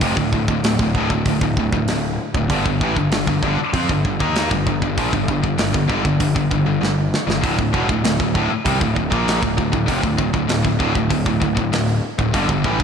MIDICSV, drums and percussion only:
0, 0, Header, 1, 2, 480
1, 0, Start_track
1, 0, Key_signature, -1, "minor"
1, 0, Tempo, 619835
1, 13, Time_signature, 4, 2, 24, 8
1, 4333, Tempo, 613497
1, 9997, End_track
2, 0, Start_track
2, 0, Title_t, "Drums"
2, 9, Note_on_c, 9, 46, 55
2, 11, Note_on_c, 9, 36, 84
2, 86, Note_off_c, 9, 46, 0
2, 88, Note_off_c, 9, 36, 0
2, 131, Note_on_c, 9, 36, 87
2, 208, Note_off_c, 9, 36, 0
2, 253, Note_on_c, 9, 36, 81
2, 330, Note_off_c, 9, 36, 0
2, 373, Note_on_c, 9, 36, 88
2, 450, Note_off_c, 9, 36, 0
2, 495, Note_on_c, 9, 46, 58
2, 502, Note_on_c, 9, 38, 106
2, 573, Note_off_c, 9, 46, 0
2, 579, Note_off_c, 9, 38, 0
2, 614, Note_on_c, 9, 36, 86
2, 691, Note_off_c, 9, 36, 0
2, 734, Note_on_c, 9, 36, 73
2, 811, Note_off_c, 9, 36, 0
2, 853, Note_on_c, 9, 36, 79
2, 930, Note_off_c, 9, 36, 0
2, 972, Note_on_c, 9, 46, 51
2, 974, Note_on_c, 9, 36, 80
2, 1050, Note_off_c, 9, 46, 0
2, 1051, Note_off_c, 9, 36, 0
2, 1095, Note_on_c, 9, 36, 90
2, 1172, Note_off_c, 9, 36, 0
2, 1215, Note_on_c, 9, 36, 81
2, 1293, Note_off_c, 9, 36, 0
2, 1336, Note_on_c, 9, 36, 79
2, 1413, Note_off_c, 9, 36, 0
2, 1454, Note_on_c, 9, 46, 51
2, 1461, Note_on_c, 9, 38, 96
2, 1532, Note_off_c, 9, 46, 0
2, 1538, Note_off_c, 9, 38, 0
2, 1816, Note_on_c, 9, 36, 83
2, 1894, Note_off_c, 9, 36, 0
2, 1933, Note_on_c, 9, 46, 47
2, 1934, Note_on_c, 9, 36, 88
2, 2011, Note_off_c, 9, 46, 0
2, 2012, Note_off_c, 9, 36, 0
2, 2057, Note_on_c, 9, 36, 83
2, 2134, Note_off_c, 9, 36, 0
2, 2177, Note_on_c, 9, 36, 76
2, 2254, Note_off_c, 9, 36, 0
2, 2296, Note_on_c, 9, 36, 82
2, 2373, Note_off_c, 9, 36, 0
2, 2414, Note_on_c, 9, 46, 52
2, 2420, Note_on_c, 9, 38, 113
2, 2491, Note_off_c, 9, 46, 0
2, 2497, Note_off_c, 9, 38, 0
2, 2535, Note_on_c, 9, 36, 91
2, 2613, Note_off_c, 9, 36, 0
2, 2653, Note_on_c, 9, 36, 81
2, 2731, Note_off_c, 9, 36, 0
2, 2894, Note_on_c, 9, 36, 103
2, 2894, Note_on_c, 9, 46, 48
2, 2971, Note_off_c, 9, 36, 0
2, 2972, Note_off_c, 9, 46, 0
2, 3015, Note_on_c, 9, 36, 84
2, 3092, Note_off_c, 9, 36, 0
2, 3135, Note_on_c, 9, 36, 77
2, 3213, Note_off_c, 9, 36, 0
2, 3255, Note_on_c, 9, 36, 80
2, 3333, Note_off_c, 9, 36, 0
2, 3374, Note_on_c, 9, 46, 51
2, 3380, Note_on_c, 9, 38, 90
2, 3451, Note_off_c, 9, 46, 0
2, 3457, Note_off_c, 9, 38, 0
2, 3494, Note_on_c, 9, 36, 84
2, 3571, Note_off_c, 9, 36, 0
2, 3614, Note_on_c, 9, 36, 74
2, 3691, Note_off_c, 9, 36, 0
2, 3733, Note_on_c, 9, 36, 74
2, 3810, Note_off_c, 9, 36, 0
2, 3853, Note_on_c, 9, 46, 50
2, 3854, Note_on_c, 9, 36, 86
2, 3931, Note_off_c, 9, 46, 0
2, 3932, Note_off_c, 9, 36, 0
2, 3973, Note_on_c, 9, 36, 80
2, 4050, Note_off_c, 9, 36, 0
2, 4092, Note_on_c, 9, 36, 80
2, 4169, Note_off_c, 9, 36, 0
2, 4210, Note_on_c, 9, 36, 82
2, 4287, Note_off_c, 9, 36, 0
2, 4325, Note_on_c, 9, 46, 56
2, 4331, Note_on_c, 9, 38, 101
2, 4403, Note_off_c, 9, 46, 0
2, 4409, Note_off_c, 9, 38, 0
2, 4449, Note_on_c, 9, 36, 91
2, 4527, Note_off_c, 9, 36, 0
2, 4568, Note_on_c, 9, 36, 81
2, 4646, Note_off_c, 9, 36, 0
2, 4688, Note_on_c, 9, 36, 81
2, 4767, Note_off_c, 9, 36, 0
2, 4807, Note_on_c, 9, 46, 57
2, 4809, Note_on_c, 9, 36, 83
2, 4885, Note_off_c, 9, 46, 0
2, 4887, Note_off_c, 9, 36, 0
2, 4930, Note_on_c, 9, 36, 85
2, 5009, Note_off_c, 9, 36, 0
2, 5051, Note_on_c, 9, 36, 82
2, 5129, Note_off_c, 9, 36, 0
2, 5302, Note_on_c, 9, 38, 58
2, 5380, Note_off_c, 9, 38, 0
2, 5541, Note_on_c, 9, 38, 76
2, 5619, Note_off_c, 9, 38, 0
2, 5666, Note_on_c, 9, 38, 73
2, 5745, Note_off_c, 9, 38, 0
2, 5773, Note_on_c, 9, 36, 93
2, 5781, Note_on_c, 9, 46, 47
2, 5851, Note_off_c, 9, 36, 0
2, 5859, Note_off_c, 9, 46, 0
2, 5891, Note_on_c, 9, 36, 85
2, 5969, Note_off_c, 9, 36, 0
2, 6010, Note_on_c, 9, 36, 83
2, 6088, Note_off_c, 9, 36, 0
2, 6130, Note_on_c, 9, 36, 86
2, 6208, Note_off_c, 9, 36, 0
2, 6250, Note_on_c, 9, 46, 53
2, 6256, Note_on_c, 9, 38, 109
2, 6328, Note_off_c, 9, 46, 0
2, 6335, Note_off_c, 9, 38, 0
2, 6370, Note_on_c, 9, 36, 89
2, 6448, Note_off_c, 9, 36, 0
2, 6489, Note_on_c, 9, 36, 75
2, 6567, Note_off_c, 9, 36, 0
2, 6729, Note_on_c, 9, 36, 93
2, 6735, Note_on_c, 9, 46, 53
2, 6807, Note_off_c, 9, 36, 0
2, 6813, Note_off_c, 9, 46, 0
2, 6850, Note_on_c, 9, 36, 82
2, 6928, Note_off_c, 9, 36, 0
2, 6968, Note_on_c, 9, 36, 79
2, 7047, Note_off_c, 9, 36, 0
2, 7090, Note_on_c, 9, 36, 79
2, 7168, Note_off_c, 9, 36, 0
2, 7217, Note_on_c, 9, 46, 47
2, 7223, Note_on_c, 9, 38, 97
2, 7295, Note_off_c, 9, 46, 0
2, 7302, Note_off_c, 9, 38, 0
2, 7330, Note_on_c, 9, 36, 85
2, 7408, Note_off_c, 9, 36, 0
2, 7450, Note_on_c, 9, 36, 77
2, 7529, Note_off_c, 9, 36, 0
2, 7569, Note_on_c, 9, 36, 80
2, 7647, Note_off_c, 9, 36, 0
2, 7687, Note_on_c, 9, 36, 80
2, 7690, Note_on_c, 9, 46, 51
2, 7765, Note_off_c, 9, 36, 0
2, 7769, Note_off_c, 9, 46, 0
2, 7806, Note_on_c, 9, 36, 81
2, 7884, Note_off_c, 9, 36, 0
2, 7924, Note_on_c, 9, 36, 88
2, 8002, Note_off_c, 9, 36, 0
2, 8044, Note_on_c, 9, 36, 79
2, 8122, Note_off_c, 9, 36, 0
2, 8165, Note_on_c, 9, 46, 57
2, 8172, Note_on_c, 9, 38, 110
2, 8244, Note_off_c, 9, 46, 0
2, 8250, Note_off_c, 9, 38, 0
2, 8285, Note_on_c, 9, 36, 90
2, 8363, Note_off_c, 9, 36, 0
2, 8405, Note_on_c, 9, 36, 77
2, 8483, Note_off_c, 9, 36, 0
2, 8525, Note_on_c, 9, 36, 83
2, 8604, Note_off_c, 9, 36, 0
2, 8644, Note_on_c, 9, 36, 78
2, 8646, Note_on_c, 9, 46, 54
2, 8722, Note_off_c, 9, 36, 0
2, 8724, Note_off_c, 9, 46, 0
2, 8766, Note_on_c, 9, 36, 79
2, 8844, Note_off_c, 9, 36, 0
2, 8887, Note_on_c, 9, 36, 80
2, 8965, Note_off_c, 9, 36, 0
2, 9008, Note_on_c, 9, 36, 81
2, 9086, Note_off_c, 9, 36, 0
2, 9132, Note_on_c, 9, 46, 50
2, 9138, Note_on_c, 9, 38, 101
2, 9210, Note_off_c, 9, 46, 0
2, 9216, Note_off_c, 9, 38, 0
2, 9491, Note_on_c, 9, 36, 83
2, 9569, Note_off_c, 9, 36, 0
2, 9609, Note_on_c, 9, 36, 82
2, 9609, Note_on_c, 9, 46, 51
2, 9687, Note_off_c, 9, 36, 0
2, 9688, Note_off_c, 9, 46, 0
2, 9728, Note_on_c, 9, 36, 83
2, 9806, Note_off_c, 9, 36, 0
2, 9848, Note_on_c, 9, 36, 85
2, 9926, Note_off_c, 9, 36, 0
2, 9969, Note_on_c, 9, 36, 83
2, 9997, Note_off_c, 9, 36, 0
2, 9997, End_track
0, 0, End_of_file